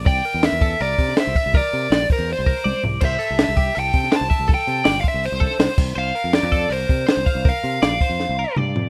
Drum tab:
CC |----------------|----------------|x---------------|--------------x-|
HH |o-o-o-o-o-o-o-o-|o-o-o-o-o-o-----|--o-o-o-o-o-o-o-|o-o-o-o-o-o-o---|
SD |----o------oo---|----o-----------|----o------oo---|----o------oo---|
T1 |----------------|------------o---|----------------|----------------|
T2 |----------------|----------------|----------------|----------------|
FT |----------------|--------------o-|----------------|----------------|
BD |o-----o---o---o-|o-----o---o-----|o-----o---o---o-|o-----o---o---o-|

CC |----------------|----------------|
HH |--o-o-o-o-o-o-o-|o-o-o-o---------|
SD |----o-------o---|----o---o-------|
T1 |----------------|----------------|
T2 |----------------|------------o---|
FT |----------------|--------------o-|
BD |------o---o---o-|o-----o---------|